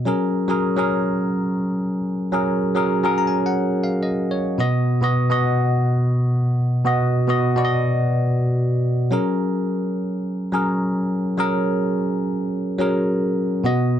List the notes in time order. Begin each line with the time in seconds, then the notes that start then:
0.05 F#3 C#4 G#4 A#4
0.48 F#3 C#4 G#4 A#4
0.77 F#3 C#4 G#4 A#4
2.32 F#3 C#4 G#4 A#4
2.74 F#3 C#4 G#4 A#4
3.03 F#3 C#4 G#4 A#4
3.18 A#5
3.27 G#5
3.46 F#5
3.84 F5
4.03 D#5
4.31 C#5
4.58 B2 B3 F#4 D#5
5.01 B2 B3 F#4 D#5
5.29 B2 B3 F#4 D#5
6.84 B2 B3 F#4 D#5
7.27 B2 B3 F#4 D#5
7.56 B2 B3 F#4 D5
7.65 D#5
9.11 F#3 C#4 G#4 A#4
10.52 F#3 C#4 G#4 A#4
11.37 F#3 C#4 G#4 A#4
12.79 F#3 C#4 G#4 A#4
13.64 B2 B3 F#4 D#5